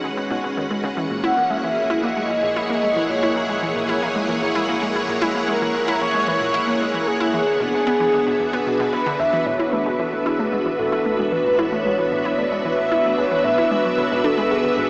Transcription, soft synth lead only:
0, 0, Header, 1, 2, 480
1, 0, Start_track
1, 0, Tempo, 530973
1, 875, Time_signature, 4, 2, 24, 8
1, 13467, End_track
2, 0, Start_track
2, 0, Title_t, "Soft synth lead"
2, 0, Program_c, 0, 80
2, 1114, Note_on_c, 0, 78, 102
2, 1356, Note_on_c, 0, 76, 97
2, 1370, Note_off_c, 0, 78, 0
2, 1418, Note_on_c, 0, 78, 82
2, 1432, Note_off_c, 0, 76, 0
2, 1481, Note_on_c, 0, 76, 101
2, 1495, Note_off_c, 0, 78, 0
2, 1835, Note_on_c, 0, 75, 99
2, 1849, Note_off_c, 0, 76, 0
2, 2792, Note_off_c, 0, 75, 0
2, 2797, Note_on_c, 0, 73, 82
2, 3243, Note_off_c, 0, 73, 0
2, 4953, Note_on_c, 0, 70, 92
2, 5401, Note_off_c, 0, 70, 0
2, 5433, Note_on_c, 0, 73, 109
2, 5658, Note_off_c, 0, 73, 0
2, 5675, Note_on_c, 0, 73, 101
2, 6122, Note_off_c, 0, 73, 0
2, 6332, Note_on_c, 0, 70, 82
2, 6392, Note_on_c, 0, 68, 126
2, 6405, Note_off_c, 0, 70, 0
2, 8070, Note_off_c, 0, 68, 0
2, 8075, Note_on_c, 0, 71, 101
2, 8312, Note_on_c, 0, 76, 107
2, 8326, Note_off_c, 0, 71, 0
2, 8552, Note_on_c, 0, 73, 110
2, 8566, Note_off_c, 0, 76, 0
2, 8791, Note_on_c, 0, 71, 95
2, 8805, Note_off_c, 0, 73, 0
2, 9032, Note_on_c, 0, 69, 90
2, 9046, Note_off_c, 0, 71, 0
2, 9273, Note_on_c, 0, 68, 100
2, 9286, Note_off_c, 0, 69, 0
2, 9685, Note_off_c, 0, 68, 0
2, 9690, Note_on_c, 0, 71, 74
2, 9751, Note_on_c, 0, 69, 96
2, 9765, Note_off_c, 0, 71, 0
2, 10231, Note_on_c, 0, 71, 98
2, 10245, Note_off_c, 0, 69, 0
2, 10470, Note_on_c, 0, 73, 114
2, 10484, Note_off_c, 0, 71, 0
2, 11191, Note_on_c, 0, 74, 100
2, 11205, Note_off_c, 0, 73, 0
2, 11424, Note_off_c, 0, 74, 0
2, 11429, Note_on_c, 0, 76, 103
2, 11878, Note_off_c, 0, 76, 0
2, 11909, Note_on_c, 0, 73, 97
2, 12149, Note_on_c, 0, 76, 100
2, 12163, Note_off_c, 0, 73, 0
2, 12390, Note_on_c, 0, 73, 107
2, 12404, Note_off_c, 0, 76, 0
2, 12630, Note_on_c, 0, 71, 91
2, 12643, Note_off_c, 0, 73, 0
2, 12870, Note_on_c, 0, 69, 95
2, 12884, Note_off_c, 0, 71, 0
2, 13113, Note_on_c, 0, 68, 96
2, 13126, Note_off_c, 0, 69, 0
2, 13467, Note_off_c, 0, 68, 0
2, 13467, End_track
0, 0, End_of_file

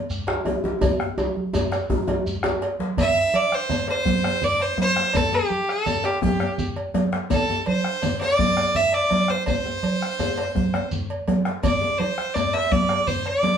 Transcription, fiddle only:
0, 0, Header, 1, 2, 480
1, 0, Start_track
1, 0, Key_signature, 0, "major"
1, 0, Tempo, 360577
1, 1088, Time_signature, 12, 3, 24, 8
1, 18071, End_track
2, 0, Start_track
2, 0, Title_t, "Fiddle"
2, 0, Program_c, 0, 110
2, 3992, Note_on_c, 0, 76, 92
2, 4457, Note_on_c, 0, 74, 94
2, 4477, Note_off_c, 0, 76, 0
2, 4708, Note_on_c, 0, 72, 94
2, 4728, Note_off_c, 0, 74, 0
2, 5179, Note_off_c, 0, 72, 0
2, 5188, Note_on_c, 0, 72, 94
2, 5910, Note_on_c, 0, 74, 93
2, 5930, Note_off_c, 0, 72, 0
2, 6149, Note_on_c, 0, 72, 83
2, 6169, Note_off_c, 0, 74, 0
2, 6379, Note_off_c, 0, 72, 0
2, 6404, Note_on_c, 0, 72, 96
2, 6877, Note_on_c, 0, 69, 84
2, 6897, Note_off_c, 0, 72, 0
2, 7105, Note_on_c, 0, 67, 80
2, 7125, Note_off_c, 0, 69, 0
2, 7593, Note_on_c, 0, 69, 91
2, 7613, Note_off_c, 0, 67, 0
2, 8053, Note_on_c, 0, 67, 77
2, 8073, Note_off_c, 0, 69, 0
2, 8276, Note_off_c, 0, 67, 0
2, 8284, Note_on_c, 0, 67, 71
2, 8789, Note_off_c, 0, 67, 0
2, 9736, Note_on_c, 0, 69, 82
2, 10179, Note_off_c, 0, 69, 0
2, 10214, Note_on_c, 0, 72, 91
2, 10881, Note_off_c, 0, 72, 0
2, 10930, Note_on_c, 0, 74, 100
2, 11656, Note_on_c, 0, 76, 96
2, 11676, Note_off_c, 0, 74, 0
2, 11900, Note_on_c, 0, 74, 96
2, 11920, Note_off_c, 0, 76, 0
2, 12378, Note_on_c, 0, 72, 88
2, 12398, Note_off_c, 0, 74, 0
2, 12605, Note_off_c, 0, 72, 0
2, 12613, Note_on_c, 0, 72, 89
2, 14476, Note_off_c, 0, 72, 0
2, 15492, Note_on_c, 0, 74, 81
2, 15954, Note_on_c, 0, 72, 86
2, 15974, Note_off_c, 0, 74, 0
2, 16433, Note_on_c, 0, 74, 74
2, 16453, Note_off_c, 0, 72, 0
2, 16686, Note_on_c, 0, 76, 82
2, 16706, Note_off_c, 0, 74, 0
2, 16930, Note_on_c, 0, 74, 89
2, 16950, Note_off_c, 0, 76, 0
2, 17401, Note_on_c, 0, 72, 84
2, 17421, Note_off_c, 0, 74, 0
2, 17662, Note_on_c, 0, 74, 88
2, 17682, Note_off_c, 0, 72, 0
2, 18071, Note_off_c, 0, 74, 0
2, 18071, End_track
0, 0, End_of_file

